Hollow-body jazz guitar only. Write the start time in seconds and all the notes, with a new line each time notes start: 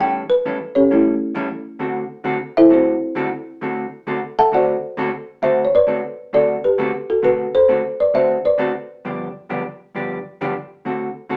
0.00 A2 E3 G3 C#4 E4 A4
0.45 A2 E3 G3 C#4 E4 A4
0.90 A2 E3 G3 C#4 E4 A4
1.35 A2 E3 G3 C#4 E4 A4
1.79 D3 A3 C4 F#4 A4
2.24 D3 A3 C4 F#4 A4
2.69 D3 A3 C4 F#4 A4
3.15 D3 A3 C4 F#4 A4
3.61 D3 A3 C4 F#4 A4
4.07 D3 A3 C4 F#4 A4
4.52 D3 A3 C4 F#4 A4
4.97 D3 A3 C4 F#4 A4
5.42 D3 A3 C4 F#4 A4
5.87 D3 A3 C4 F#4 A4
6.33 D3 A3 C4 F#4 A4
6.78 D3 A3 C4 F#4 A4
7.22 D3 A3 C4 F#4 A4
7.68 D3 A3 C4 F#4 A4
8.14 D3 A3 C4 F#4 A4
8.58 D3 A3 C4 F#4 A4
9.05 G2 D3 F3 B3 D4 G4
9.49 G2 D3 F3 B3 D4 G4
9.95 G2 D3 F3 B3 D4 G4
10.41 G2 D3 F3 B3 D4 G4
10.85 D3 A3 C4 F#4 A4
11.29 D3 A3 C4 F#4 A4